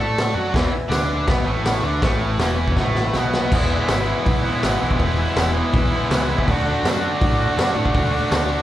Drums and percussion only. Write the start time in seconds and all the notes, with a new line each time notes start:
0.18 snare, open hi-hat, tambourine
0.54 kick, snare, open hi-hat
0.91 snare, open hi-hat, tambourine
1.27 kick, snare, open hi-hat
1.65 snare, open hi-hat, tambourine
2.02 kick, snare, open hi-hat
2.39 snare, open hi-hat, tambourine
2.68 kick
2.77 kick, snare
2.96 snare
3.13 snare, tambourine
3.34 snare
3.52 kick, crash
3.88 snare, open hi-hat, tambourine
4.26 kick, open hi-hat
4.62 snare, open hi-hat, tambourine
4.91 kick
4.99 kick, open hi-hat
5.36 snare, open hi-hat, tambourine
5.73 kick, open hi-hat
6.10 snare, open hi-hat, tambourine
6.38 kick
6.48 kick, open hi-hat
6.85 snare, open hi-hat, tambourine
7.21 kick, open hi-hat
7.58 snare, open hi-hat, tambourine
7.85 kick
7.94 kick, open hi-hat
8.31 snare, open hi-hat, tambourine